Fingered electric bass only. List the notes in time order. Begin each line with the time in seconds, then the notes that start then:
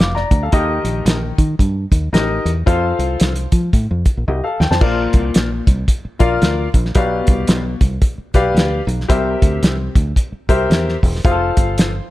0.00 F1
0.31 D2
0.53 D#2
0.84 A#1
1.05 A#1
1.38 D#3
1.59 G2
1.91 D#2
2.13 A1
2.45 E2
2.67 F2
2.99 C2
3.21 C2
3.52 F3
3.73 A2
3.91 F2
4.17 A#1
4.28 C2
4.60 D#2
4.71 F2
4.81 A#1
5.14 C2
5.35 A#1
5.67 C2
6.05 muted fingered electric bass stroke
6.20 A#1
6.42 D2
6.74 A#1
6.95 B1
7.28 C2
7.48 B1
7.81 C2
8.18 muted fingered electric bass stroke
8.34 B1
8.54 D2
8.87 B1
9.09 C2
9.42 D2
9.63 C2
9.95 D2
10.32 muted fingered electric bass stroke
10.49 C2
10.70 E2
11.03 E1
11.25 F1
11.57 G1